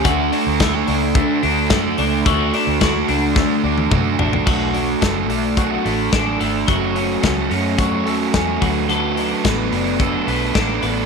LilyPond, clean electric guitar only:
\new Staff \with { instrumentName = "Clean electric guitar" } { \time 4/4 \key d \major \tempo 4 = 108 <a fis'>8 d'8 e'16 fis'16 d'8 a8 d'8 a8 d'8 | <a fis'>8 d'8 fis'8 d'8 a8 d'8 a8 d'8 | \key b \minor <a fis'>8 d'8 a8 d'8 fis'8 a8 d'8 a8 | <fis fis'>8 cis'8 a8 cis'8 fis'8 a8 cis'8 fis8 |
<fis a'>8 d'8 b8 d'8 a'8 b8 d'8 b8 | }